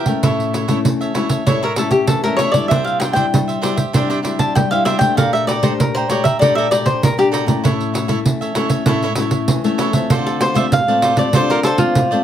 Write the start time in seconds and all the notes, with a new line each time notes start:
Already playing: E5
0.06 A3 C#4 E4 A#4 E5 G5, pandeiro
0.23 A2 E4 A4 C#5 E5, pandeiro
0.40 pandeiro
0.53 E4 A4 C#5 E5, pandeiro
0.68 A3 C#4 E4 A4 C#5 E5, pandeiro
0.85 E3, pandeiro
1.01 A4 C#5 E5, pandeiro
1.14 A3 C#4 E4 A4 C#5 E5, pandeiro
1.29 A4 C#5 E5, pandeiro
1.46 A2 A3 C#4 E4 A4 C#5 E5, pandeiro
1.63 E4 A4 A#4 C#5 E5, pandeiro
1.76 A3 C#4 E4 A4 C#5 E5, pandeiro
1.91 G4, pandeiro
2.07 E3 A4, pandeiro
2.24 A3 C#4 E4 A4 A#4 C#5 E5, pandeiro
2.37 E4 A4 C#5 E5, pandeiro
2.52 G3 D4 E4 A4 C#5 D5 E5, pandeiro
2.68 C3 D4 G4 C5 E5, pandeiro
2.84 F5, pandeiro
3.00 D4 G4 C5 E5 G5, pandeiro
3.13 G3 D4 E4 G4 C5 E5 G5, pandeiro
3.33 G3, pandeiro
3.48 G4 C5 E5, pandeiro
3.62 G3 D4 E4 G4 C5 E5, pandeiro
3.76 G4 C5 E5, pandeiro
3.93 C3 G3 D4 E4 G4 C5 E5, pandeiro
4.10 D4 G4 C5 E5, pandeiro
4.23 G3 D4 E4 G4 C5 E5, pandeiro
4.39 A5, pandeiro
4.55 G3 G5, pandeiro
4.71 G3 D4 E4 G4 C5 E5 F5, pandeiro
4.85 D4 G4 C5 E5, pandeiro
4.99 A3 D4 G4 C5 E5 G5, pandeiro
5.17 A#2 A4 D5 F5 G5 A#5, pandeiro
5.33 E5, pandeiro
5.47 A4 D5 G5 A#5, pandeiro
5.62 A3 D4 G4 A4 C5 D5 G5 A#5, pandeiro
5.79 A#2 A#4, pandeiro
5.95 C5 D5 G5 A#5, pandeiro
6.10 A3 D4 G4 A4 C#5 D5 G5 A#5, pandeiro
6.24 E5 G5 A#5, pandeiro
6.39 A#2 A3 D4 G4 A4 D5 G5 A#5, pandeiro
6.55 A4 D5 E5 G5 A#5, pandeiro
6.71 A3 D4 G4 D5 G5 A#5, pandeiro
6.86 C5, pandeiro
7.02 A#2 A#4, pandeiro
7.17 A3 D4 G4 D5 G5 A#5, pandeiro
7.32 A4 D5 G5 A#5, pandeiro
7.46 A3 C#4 E4 D5 G5 A#5, pandeiro
7.64 A2 E4 A4 C#5 E5, pandeiro
7.80 pandeiro
7.94 E4 A4 C#5 E5, pandeiro
8.08 A3 C#4 E4 A4 C#5 E5, pandeiro
8.26 E3, pandeiro
8.41 A4 C#5 E5, pandeiro
8.55 A3 C#4 E4 A4 C#5 E5, pandeiro
8.70 A4 C#5 E5, pandeiro
8.86 A2 A3 C#4 E4 A4 C#5 E5, pandeiro
9.02 E4 A4 C#5 E5, pandeiro
9.15 A3 C#4 E4 A4 C#5 E5, pandeiro
9.31 pandeiro
9.48 E3, pandeiro
9.64 A3 C#4 E4 A4 C#5 E5, pandeiro
9.78 E4 A4 C#5 E5, pandeiro
9.93 A3 C4 F4 A4 C#5 E5, pandeiro
10.10 D3 F4 A4 C5 D5, pandeiro
10.26 A4, pandeiro
10.40 F4 A4 C5 D5, pandeiro
10.54 A3 C4 F4 A4 C5 D5 E5, pandeiro
10.72 A2 F5, pandeiro
10.87 A3 C4 F4 A4 C5 D5, pandeiro
11.02 F4 A4 C5 D5, pandeiro
11.16 A3 C4 F4 A4 C5 D5, pandeiro
11.33 D3 A3 C4 F4 A4 C5 D5, pandeiro
11.50 F4 A4 A#4 C5 D5, pandeiro
11.63 F4 A4 C5 D5, pandeiro
11.78 A3 C4 F4, pandeiro
11.95 A2, pandeiro
12.11 A3 C4 F4 A4 C5 D5, pandeiro